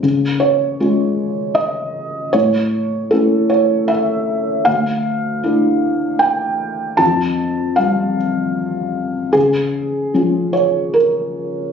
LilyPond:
<<
  \new Staff \with { instrumentName = "Felt piano" } { \time 3/4 \key des \lydian \tempo 4 = 77 r8 des''4. ees''4 | cis''4 a'8 cis''8 e''4 | f''2 g''4 | a''4 f''8 r4. |
aes'4. des''8 bes'4 | }
  \new Staff \with { instrumentName = "Felt piano" } { \time 3/4 \key des \lydian des4 <aes des' f'>2 | a,4 <a cis' e'>2 | d,4 <a d' e'>2 | f,4 <g c' f'>2 |
des4 <f des' f'>2 | }
>>